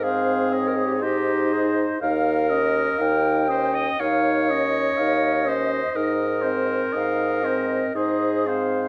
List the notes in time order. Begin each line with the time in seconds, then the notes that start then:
Already playing: G#2
0.03 C4 G#4 C5 F5
0.53 C#5 D#5
0.68 A#4
0.76 G#4
0.85 G4
0.94 G#4
1.02 D#4 G4 C5 D#5
1.53 G#4
2.01 D#2 D#4 A#4 F5
2.50 C#4 D#5
2.98 D#2 D#4 F5 G5
3.48 C#4 C5 D#5
3.75 D#5
3.99 D#2 D#4 C#5 F5
4.49 C#4 D#5
4.97 D#2 D#4 F5
5.46 C#4 C5 D#5
5.94 G#2 D#4 A#4 D#5
6.42 C4 C5
6.93 G#2 D#4 D#5 F5
7.44 C4 C5 D#5
7.94 G#2 D#4 G#4 C5 D#5
8.46 C4 C5 F5